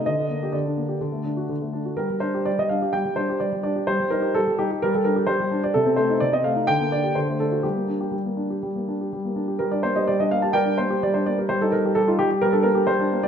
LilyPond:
<<
  \new Staff \with { instrumentName = "Grand piano" } { \time 4/4 \key g \minor \tempo 4 = 127 ees''4 d''2 r4 | bes'8 c''8 d''16 ees''16 f''8 g''8 c''8 d''8 d''8 | c''8 bes'8 a'8 g'8 bes'16 a'16 bes'8 c''8. d''16 | a'8 c''8 d''16 ees''16 f''8 g''8 d''8 c''8 a'8 |
g'2.~ g'8 r8 | bes'16 d''16 c''16 ees''16 d''16 ees''16 f''16 a''16 <bes' d'' g''>8 c''8 d''16 c''16 d''16 bes'16 | c''16 a'16 bes'8 a'16 f'16 g'8 bes'16 a'16 bes'8 c''8. d''16 | }
  \new Staff \with { instrumentName = "Grand piano" } { \time 4/4 \key g \minor d16 d'16 bes16 g'16 d16 d'16 bes16 g'16 d16 a16 d'16 fis'16 d16 a16 d'16 fis'16 | g16 g16 d'16 g'16 g16 g16 d'16 g'16 g16 g16 d'16 g'16 g16 g16 d'16 g'16 | g16 g16 ees'16 g'16 g16 g16 ees'16 g'16 g16 g16 d'16 g'16 g16 g16 d'16 g'16 | c16 c'16 a16 ees'16 c16 c'16 a16 ees'16 d16 bes16 d'16 g'16 d16 a16 d'16 fis'16 |
g16 bes16 d'16 g'16 g16 bes16 d'16 g'16 g16 bes16 d'16 g'16 g16 bes16 d'16 g'16 | g16 d'16 bes16 g'16 g16 d'16 bes16 g'16 g16 d'16 bes16 g'16 g16 d'16 bes16 g'16 | g16 ees'16 g16 g'16 g16 ees'16 g16 g'16 g16 d'16 bes16 g'16 g16 d'16 bes16 g'16 | }
>>